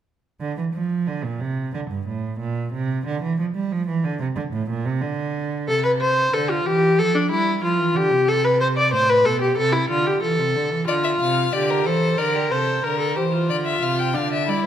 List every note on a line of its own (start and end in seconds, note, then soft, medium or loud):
0.40 0.56 D3 medium
0.58 0.64 E3 medium
0.74 1.09 F3 medium
1.07 1.25 D3 medium
1.24 1.42 A#2 medium
1.41 1.73 C3 medium
1.74 1.80 D3 medium
1.90 2.07 G2 medium
2.07 2.39 A2 medium
2.40 2.72 A#2 medium
2.73 3.05 C3 medium
3.06 3.22 D3 medium
3.23 3.38 E3 medium
3.39 3.45 F3 medium
3.55 3.73 G3 medium
3.72 3.87 F3 medium
3.88 4.06 E3 medium
4.04 4.20 D3 medium
4.21 4.27 C3 medium
4.36 4.43 D3 medium
4.53 4.69 A2 medium
4.70 4.87 A#2 medium
4.85 5.03 C3 medium
5.02 5.69 D3 medium
5.68 6.31 C3 medium
5.68 5.83 A4 medium
5.85 5.91 B4 medium
6.01 6.35 C5 loud
6.32 6.64 D3 medium
6.32 6.51 A4 medium
6.50 6.68 F4 medium
6.65 6.99 E3 medium
6.65 7.00 G4 medium
6.98 7.30 F3 medium
6.98 7.16 A4 loud
7.15 7.30 D4 medium
7.31 7.62 G3 medium
7.31 7.63 E4 medium
7.63 7.80 F3 medium
7.63 7.97 F4 medium
7.79 7.96 E3 medium
7.95 8.12 D3 medium
7.95 8.30 G4 medium
8.11 8.94 C3 medium
8.28 8.46 A4 loud
8.45 8.60 B4 medium
8.61 8.67 C5 medium
8.77 8.93 D5 medium
8.93 9.26 A2 medium
8.93 9.11 C5 medium
9.09 9.27 B4 medium
9.25 9.57 B2 medium
9.25 9.41 A4 medium
9.41 9.57 G4 medium
9.57 9.89 C3 medium
9.57 9.74 A4 medium
9.73 9.89 E4 medium
9.90 10.22 D3 medium
9.90 10.08 F4 medium
10.07 10.22 G4 medium
10.23 10.40 E3 medium
10.23 10.87 A4 medium
10.39 10.57 C3 medium
10.56 10.74 D3 medium
10.72 10.88 E3 medium
10.88 11.20 D3 medium
10.88 11.52 F4 medium
10.88 10.95 D5 medium
11.04 11.10 E5 medium
11.20 11.53 C3 medium
11.20 11.54 F5 medium
11.53 11.88 D3 medium
11.53 11.87 G4 medium
11.53 11.72 D5 medium
11.70 11.87 A#4 medium
11.85 12.18 E3 medium
11.85 12.19 A4 medium
11.85 12.20 C5 medium
12.18 12.53 D3 medium
12.18 12.53 A#4 medium
12.18 12.36 D5 medium
12.35 12.51 G4 medium
12.51 12.83 C3 medium
12.51 12.84 A4 medium
12.51 12.85 C5 medium
12.84 13.18 D3 medium
12.84 12.98 A#4 medium
12.84 13.18 A#4 medium
12.99 13.16 A4 medium
13.16 13.51 E3 medium
13.16 13.23 G4 medium
13.16 13.49 C5 medium
13.32 14.15 F4 medium
13.49 13.82 D3 medium
13.49 13.56 D5 medium
13.66 13.84 E5 medium
13.82 14.17 C3 medium
13.82 14.01 F5 medium
13.99 14.17 G5 medium
14.14 14.50 D3 medium
14.14 14.47 D4 medium
14.14 14.32 F5 medium
14.32 14.50 E5 medium
14.47 14.66 G3 medium
14.47 14.66 E4 medium
14.47 14.64 D5 medium